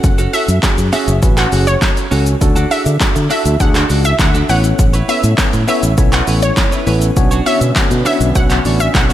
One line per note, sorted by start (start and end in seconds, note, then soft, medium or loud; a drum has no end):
0.00 0.26 F#1 loud
0.00 0.22 C#4 medium
0.00 0.22 F#4 medium
0.00 0.22 A4 medium
0.00 muted clean electric guitar stroke soft
0.00 kick loud
0.00 closed hi-hat medium
0.00 shaker medium
0.18 0.32 C#4 medium
0.18 0.33 F#4 medium
0.18 0.34 A4 loud
0.18 closed hi-hat medium
0.18 shaker medium
0.33 0.48 C#4 medium
0.33 0.57 C#4 medium
0.33 0.57 F#4 medium
0.33 0.48 F#4 medium
0.33 0.57 A4 medium
0.33 0.47 A4 medium
0.33 0.46 E5 medium
0.33 open hi-hat medium
0.33 shaker soft
0.48 0.59 F#2 medium
0.48 muted clean electric guitar stroke soft
0.48 closed hi-hat medium
0.48 shaker medium
0.63 0.86 C#4 medium
0.63 0.86 F#4 medium
0.63 0.87 G#4 loud
0.63 muted clean electric guitar stroke medium
0.63 muted fingered electric bass stroke medium
0.63 kick loud
0.63 snare medium
0.63 clap loud
0.63 closed hi-hat medium
0.63 shaker medium
0.78 0.89 F#2 medium
0.78 muted clean electric guitar stroke soft
0.78 closed hi-hat medium
0.78 shaker medium
0.93 1.12 C#4 medium
0.93 1.16 C#4 loud
0.93 1.16 F#4 medium
0.93 1.08 F#4 loud
0.93 1.16 G#4 loud
0.93 1.06 A4 loud
0.93 1.17 E5 medium
0.93 open hi-hat medium
0.93 shaker medium
1.07 1.19 F#1 loud
1.07 muted clean electric guitar stroke medium
1.07 closed hi-hat medium
1.07 shaker medium
1.22 1.45 A1 loud
1.22 1.46 C#4 loud
1.22 1.46 F#4 medium
1.22 1.46 B4 loud
1.22 muted clean electric guitar stroke medium
1.22 kick loud
1.22 closed hi-hat medium
1.22 shaker medium
1.37 1.51 C#4 medium
1.37 1.52 F#4 medium
1.37 1.52 A4 medium
1.37 1.50 F#5 medium
1.37 clap medium
1.37 closed hi-hat medium
1.37 shaker medium
1.52 1.75 F#1 loud
1.52 1.67 C#4 medium
1.52 1.75 C#4 medium
1.52 1.75 F#4 medium
1.52 1.67 F#4 medium
1.52 1.76 G#4 medium
1.52 1.66 A4 medium
1.52 open hi-hat medium
1.52 shaker medium
1.67 1.79 C#5 medium
1.67 muted clean electric guitar stroke medium
1.67 closed hi-hat medium
1.67 shaker medium
1.82 2.05 C#4 medium
1.82 2.05 F#4 medium
1.82 kick loud
1.82 snare medium
1.82 clap loud
1.82 closed hi-hat medium
1.82 shaker medium
1.96 muted clean electric guitar stroke soft
1.96 closed hi-hat medium
1.96 shaker medium
2.11 2.34 C#2 medium
2.11 2.31 C#4 medium
2.11 2.35 C#4 loud
2.11 2.35 F#4 medium
2.11 2.26 F#4 medium
2.11 2.35 A4 loud
2.11 2.25 A4 loud
2.11 open hi-hat medium
2.11 shaker medium
2.26 muted clean electric guitar stroke soft
2.26 closed hi-hat medium
2.26 shaker medium
2.41 2.64 D2 loud
2.41 2.64 D4 loud
2.41 2.65 F#4 loud
2.41 2.65 A4 loud
2.41 muted clean electric guitar stroke soft
2.41 kick loud
2.41 closed hi-hat medium
2.41 shaker medium
2.56 2.69 D4 medium
2.56 2.70 F#4 medium
2.56 2.71 A4 medium
2.56 closed hi-hat medium
2.56 shaker medium
2.71 2.86 D4 medium
2.71 2.94 D4 medium
2.71 2.94 F#4 medium
2.71 2.85 F#4 medium
2.71 2.94 G#4 medium
2.71 2.84 A4 medium
2.71 2.83 E5 medium
2.71 open hi-hat medium
2.71 shaker soft
2.86 2.97 D3 loud
2.86 muted clean electric guitar stroke medium
2.86 closed hi-hat medium
2.86 shaker medium
3.00 3.24 D4 loud
3.00 3.24 F#4 medium
3.00 3.24 A4 loud
3.00 muted clean electric guitar stroke soft
3.00 muted fingered electric bass stroke soft
3.00 kick loud
3.00 snare medium
3.00 clap loud
3.00 closed hi-hat medium
3.00 shaker medium
3.15 3.27 D3 loud
3.15 muted clean electric guitar stroke medium
3.15 closed hi-hat medium
3.15 shaker medium
3.30 3.49 D4 medium
3.30 3.54 D4 loud
3.30 3.54 F#4 medium
3.30 3.45 F#4 medium
3.30 3.54 A4 loud
3.30 3.44 A4 medium
3.30 3.55 E5 medium
3.30 open hi-hat medium
3.30 shaker medium
3.45 3.57 D2 loud
3.45 muted clean electric guitar stroke medium
3.45 closed hi-hat medium
3.45 shaker medium
3.60 3.82 D2 loud
3.60 3.83 D4 loud
3.60 3.83 F#4 medium
3.60 3.84 G#4 loud
3.60 3.72 F#5 medium
3.60 muted clean electric guitar stroke soft
3.60 kick loud
3.60 closed hi-hat medium
3.60 shaker medium
3.74 3.88 D4 medium
3.74 3.89 F#4 medium
3.74 3.90 A4 loud
3.74 clap medium
3.74 closed hi-hat medium
3.74 shaker medium
3.89 4.12 C#2 loud
3.89 4.05 D4 medium
3.89 4.13 D4 medium
3.89 4.13 F#4 medium
3.89 4.04 F#4 medium
3.89 4.13 A4 medium
3.89 4.03 A4 medium
3.89 open hi-hat medium
3.89 shaker medium
4.04 4.17 E5 medium
4.04 muted clean electric guitar stroke medium
4.04 closed hi-hat medium
4.04 shaker medium
4.19 4.42 D2 loud
4.19 4.43 D4 medium
4.19 4.43 F#4 medium
4.19 4.43 A4 medium
4.19 4.32 F#5 loud
4.19 muted clean electric guitar stroke soft
4.19 kick loud
4.19 snare loud
4.19 clap loud
4.19 closed hi-hat medium
4.19 shaker medium
4.34 4.50 D4 medium
4.34 4.48 F#4 medium
4.34 4.49 A4 medium
4.34 closed hi-hat medium
4.34 shaker medium
4.49 4.72 A1 loud
4.49 4.97 B3 medium
4.49 4.97 C#4 medium
4.49 4.68 E4 medium
4.49 4.97 E4 medium
4.49 4.97 A4 medium
4.49 4.64 B4 medium
4.49 4.97 C#5 loud
4.49 4.63 C#5 medium
4.49 4.62 F#5 medium
4.49 open hi-hat medium
4.49 shaker medium
4.64 muted clean electric guitar stroke medium
4.64 closed hi-hat medium
4.64 shaker medium
4.79 5.01 A1 loud
4.79 muted clean electric guitar stroke soft
4.79 kick loud
4.79 closed hi-hat medium
4.79 shaker medium
4.93 5.07 E4 medium
4.93 5.08 B4 medium
4.93 5.09 C#5 medium
4.93 closed hi-hat medium
4.93 shaker medium
5.08 5.32 B3 medium
5.08 5.32 C#4 medium
5.08 5.23 E4 medium
5.08 5.32 E4 medium
5.08 5.32 A4 medium
5.08 5.23 B4 medium
5.08 5.32 C#5 medium
5.08 5.22 C#5 medium
5.08 5.21 E5 medium
5.08 open hi-hat medium
5.08 shaker soft
5.23 5.35 A2 medium
5.23 muted clean electric guitar stroke soft
5.23 closed hi-hat medium
5.23 shaker medium
5.38 5.62 B3 medium
5.38 5.62 C#4 medium
5.38 5.62 E4 medium
5.38 5.62 A4 medium
5.38 5.62 C#5 loud
5.38 muted clean electric guitar stroke soft
5.38 muted fingered electric bass stroke medium
5.38 kick loud
5.38 snare medium
5.38 clap loud
5.38 closed hi-hat medium
5.38 shaker medium
5.53 5.64 A2 loud
5.53 muted clean electric guitar stroke soft
5.53 closed hi-hat medium
5.53 shaker medium
5.68 5.91 B3 loud
5.68 5.91 C#4 medium
5.68 5.87 E4 medium
5.68 5.91 E4 medium
5.68 5.91 A4 medium
5.68 5.82 B4 medium
5.68 5.91 C#5 loud
5.68 5.81 C#5 loud
5.68 5.93 E5 medium
5.68 open hi-hat medium
5.68 shaker medium
5.82 5.94 A1 medium
5.82 muted clean electric guitar stroke soft
5.82 closed hi-hat medium
5.82 shaker medium
5.97 6.20 B1 loud
5.97 6.21 B3 loud
5.97 6.21 C#4 medium
5.97 6.21 E4 medium
5.97 6.21 A4 medium
5.97 6.21 C#5 loud
5.97 muted clean electric guitar stroke soft
5.97 kick loud
5.97 closed hi-hat medium
5.97 shaker medium
6.12 6.26 E4 medium
6.12 6.27 B4 medium
6.12 6.27 C#5 medium
6.12 6.25 F#5 medium
6.12 clap medium
6.12 closed hi-hat medium
6.12 shaker medium
6.27 6.50 A1 loud
6.27 6.51 B3 medium
6.27 6.51 C#4 medium
6.27 6.42 E4 medium
6.27 6.51 E4 medium
6.27 6.51 A4 medium
6.27 6.42 B4 medium
6.27 6.51 C#5 medium
6.27 6.41 C#5 medium
6.27 open hi-hat medium
6.27 shaker medium
6.42 6.55 C#5 medium
6.42 muted clean electric guitar stroke medium
6.42 closed hi-hat medium
6.42 shaker medium
6.57 6.80 B3 medium
6.57 6.80 C#4 medium
6.57 6.80 E4 medium
6.57 6.80 A4 medium
6.57 6.81 C#5 medium
6.57 muted clean electric guitar stroke soft
6.57 kick loud
6.57 snare loud
6.57 clap loud
6.57 closed hi-hat medium
6.57 shaker medium
6.71 6.85 E4 medium
6.71 6.86 B4 medium
6.71 6.87 C#5 medium
6.71 closed hi-hat medium
6.71 shaker medium
6.86 7.09 A1 medium
6.86 7.10 B3 medium
6.86 7.10 C#4 medium
6.86 7.06 E4 medium
6.86 7.10 E4 medium
6.86 7.10 A4 medium
6.86 7.10 B4 loud
6.86 7.01 B4 medium
6.86 7.00 C#5 loud
6.86 open hi-hat medium
6.86 shaker medium
7.01 muted clean electric guitar stroke soft
7.01 closed hi-hat medium
7.01 shaker medium
7.16 7.39 B1 loud
7.16 9.13 D3 medium
7.16 7.40 B3 loud
7.16 9.13 B3 medium
7.16 7.40 C#4 loud
7.16 9.13 C#4 medium
7.16 7.40 D4 loud
7.16 7.40 F#4 loud
7.16 7.40 C#5 loud
7.16 muted clean electric guitar stroke soft
7.16 kick loud
7.16 closed hi-hat medium
7.16 shaker medium
7.31 7.45 D4 medium
7.31 7.46 F#4 medium
7.31 7.46 C#5 medium
7.31 closed hi-hat medium
7.31 shaker medium
7.46 7.69 B3 medium
7.46 7.69 C#4 medium
7.46 7.61 D4 medium
7.46 7.69 D4 medium
7.46 7.70 F#4 medium
7.46 7.61 F#4 medium
7.46 7.70 C#5 medium
7.46 7.60 C#5 medium
7.46 7.58 E5 medium
7.46 open hi-hat medium
7.46 shaker soft
7.61 7.72 B2 loud
7.61 muted clean electric guitar stroke soft
7.61 closed hi-hat medium
7.61 shaker medium
7.76 7.99 B3 loud
7.76 7.99 C#4 medium
7.76 7.99 D4 medium
7.76 7.99 F#4 medium
7.76 7.99 A4 loud
7.76 muted clean electric guitar stroke soft
7.76 muted fingered electric bass stroke soft
7.76 kick loud
7.76 snare medium
7.76 clap loud
7.76 closed hi-hat medium
7.76 shaker medium
7.90 8.02 B2 loud
7.90 muted clean electric guitar stroke medium
7.90 closed hi-hat medium
7.90 shaker medium
8.05 8.29 B3 medium
8.05 8.29 C#4 medium
8.05 8.25 D4 loud
8.05 8.29 D4 medium
8.05 8.29 F#4 medium
8.05 8.20 F#4 loud
8.05 8.29 C#5 loud
8.05 8.19 C#5 loud
8.05 8.30 E5 medium
8.05 open hi-hat medium
8.05 shaker medium
8.20 8.32 B1 loud
8.20 muted clean electric guitar stroke soft
8.20 closed hi-hat medium
8.20 shaker medium
8.35 8.58 B1 loud
8.35 8.58 B3 loud
8.35 8.59 C#4 loud
8.35 8.59 D4 medium
8.35 8.59 F#4 medium
8.35 8.59 C#5 loud
8.35 8.48 F#5 medium
8.35 muted clean electric guitar stroke soft
8.35 kick loud
8.35 closed hi-hat medium
8.35 shaker medium
8.50 8.63 D4 medium
8.50 8.64 F#4 medium
8.50 8.65 C#5 medium
8.50 clap medium
8.50 closed hi-hat medium
8.50 shaker medium
8.65 8.87 A1 medium
8.65 8.88 B3 medium
8.65 8.88 C#4 medium
8.65 8.80 D4 medium
8.65 8.88 D4 medium
8.65 8.88 F#4 medium
8.65 8.80 F#4 medium
8.65 8.78 C#5 medium
8.65 8.89 D5 medium
8.65 open hi-hat medium
8.65 shaker medium
8.80 8.92 E5 medium
8.80 muted clean electric guitar stroke soft
8.80 closed hi-hat medium
8.80 shaker medium
8.95 9.13 B1 medium
8.95 9.13 B3 medium
8.95 9.13 C#4 medium
8.95 9.13 D4 medium
8.95 9.13 F#4 medium
8.95 9.13 A4 medium
8.95 9.07 F#5 medium
8.95 muted clean electric guitar stroke soft
8.95 kick loud
8.95 snare loud
8.95 clap loud
8.95 closed hi-hat medium
8.95 shaker medium
9.09 9.13 F#4 medium
9.09 9.13 C#5 medium
9.09 closed hi-hat medium
9.09 shaker medium